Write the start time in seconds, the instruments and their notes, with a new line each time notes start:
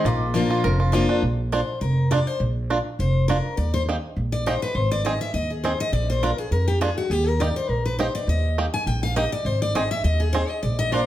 0.05 upright bass A#1, steel-string acoustic guitar A#2, five-string banjo F4, mandolin D6
0.34 steel-string acoustic guitar F3 A#3 D4 F4, five-string banjo A#3
0.50 five-string banjo F4
0.64 upright bass F1, steel-string acoustic guitar F2, five-string banjo A#4
0.80 five-string banjo F4
0.92 steel-string acoustic guitar F3 A#3 D4 F4, five-string banjo A#3
1.09 five-string banjo D4
1.23 upright bass A#1
1.52 five-string banjo A#3 D4 F4, steel-string acoustic guitar C5
1.81 upright bass F1, steel-string acoustic guitar A#4
2.11 five-string banjo A#3 D4 F4, steel-string acoustic guitar D5
2.27 steel-string acoustic guitar C5
2.40 upright bass A#1
2.70 five-string banjo A#3 D4 F4
2.99 upright bass F1, steel-string acoustic guitar C5
3.28 five-string banjo A#3 D4 F4, steel-string acoustic guitar A#4
3.57 upright bass D#2, steel-string acoustic guitar D5
3.74 steel-string acoustic guitar C5
3.89 five-string banjo A#3 D#4 G4
4.16 upright bass A#1
4.32 steel-string acoustic guitar D5
4.46 five-string banjo A#3 D#4 G4, steel-string acoustic guitar C5
4.62 steel-string acoustic guitar B4
4.75 upright bass G#1, steel-string acoustic guitar C5
4.91 steel-string acoustic guitar D5
5.05 five-string banjo C4 D#4 G#4, steel-string acoustic guitar D#5
5.21 steel-string acoustic guitar E5
5.34 upright bass D#2, steel-string acoustic guitar D#5
5.50 steel-string acoustic guitar G#4
5.64 five-string banjo C4 D#4 G#4, steel-string acoustic guitar C5
5.80 steel-string acoustic guitar D#5
5.92 upright bass A#1, steel-string acoustic guitar D5
6.10 steel-string acoustic guitar C5
6.23 five-string banjo A#3 D4 F4, steel-string acoustic guitar A#4
6.38 steel-string acoustic guitar G#4
6.51 upright bass F2, steel-string acoustic guitar A#4
6.68 steel-string acoustic guitar G4
6.81 five-string banjo A#3 D4 F4, steel-string acoustic guitar G#4
6.98 steel-string acoustic guitar F#4
7.10 upright bass D#2, steel-string acoustic guitar G4
7.28 steel-string acoustic guitar A#4
7.40 five-string banjo A#3 D#4 G4, steel-string acoustic guitar D5
7.56 steel-string acoustic guitar C5
7.69 upright bass A#1, steel-string acoustic guitar A#4
7.85 steel-string acoustic guitar B4
7.99 five-string banjo A#3 D#4 G4, steel-string acoustic guitar C5
8.15 steel-string acoustic guitar D5
8.27 upright bass D#2, steel-string acoustic guitar D#5
8.58 five-string banjo A#3 D#4 G4
8.74 steel-string acoustic guitar G#5
8.86 upright bass A#1, steel-string acoustic guitar G5
9.03 steel-string acoustic guitar F5
9.16 five-string banjo A#3 D#4 G4, steel-string acoustic guitar D#5
9.32 steel-string acoustic guitar D5
9.45 upright bass G#1, steel-string acoustic guitar C5
9.62 steel-string acoustic guitar D5
9.75 five-string banjo C4 D#4 G#4, steel-string acoustic guitar D#5
9.91 steel-string acoustic guitar E5
10.04 upright bass D#2, steel-string acoustic guitar D#5
10.20 steel-string acoustic guitar G#4
10.33 five-string banjo C4 D#4 G#4, steel-string acoustic guitar C5
10.49 steel-string acoustic guitar D#5
10.63 upright bass A#1, steel-string acoustic guitar D5
10.79 steel-string acoustic guitar D#5
10.91 mandolin A#3 F4 D5 A#5, five-string banjo A#3 D4 F4, steel-string acoustic guitar C5